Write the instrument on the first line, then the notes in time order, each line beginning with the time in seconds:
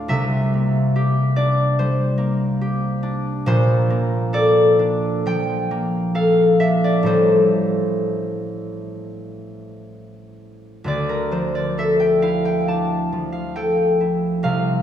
harp
Already playing: D2 A2 A3 D4 F4 C5 D5 F5
0.08 C2 C3 E5
0.54 A#3
0.96 G4
1.36 D4 D5
1.79 G3 C5
2.18 A#3
2.61 G4
3.03 D4
3.46 A#1 A#2 C5
3.90 A#3
4.33 A4 D5
4.79 D4
5.26 F3 G5
5.71 A#3
6.15 A4 F5
6.60 D4 E5
6.84 D5
7.03 A2 G3 E4 A4 C5
7.07 A1
10.84 D2 D3 D5
11.09 A#4
11.31 F3 C5
11.55 D5
11.78 A4 E5
12.00 G5
12.22 E4 F5
12.45 G5
12.68 D4 A5
13.12 F3
13.32 F5
13.56 A4 G5
14.01 E4
14.43 C2 C3 F5